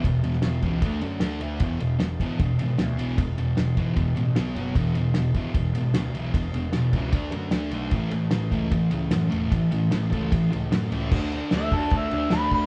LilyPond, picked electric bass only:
\new Staff \with { instrumentName = "Picked electric bass" } { \clef bass \time 4/4 \key e \mixolydian \tempo 4 = 151 e,,8 e,,8 e,,8 cis,8 d,8 fis,8 d,8 d,8 | e,,8 e,,8 e,,8 gis,,8 e,,8 gis,,8 d,8 b,,8 | e,,8 e,,8 e,,8 gis,,8 e,,8 a,,8 b,,8 fis,,8 | e,,8 e,,8 e,,8 gis,,8 e,,8 gis,,8 d,8 b,,8 |
e,,8 e,,8 e,,8 cis,8 d,8 fis,8 d,8 b,,8 | a,,8 a,,8 a,,8 cis,8 a,,8 cis,8 fis,8 e,,8 | a,,8 a,,8 a,,8 cis,8 a,,8 cis,8 fis,8 cis,8 | d,4 d,8 d,8 d,8 d,8 d,8 d,8 | }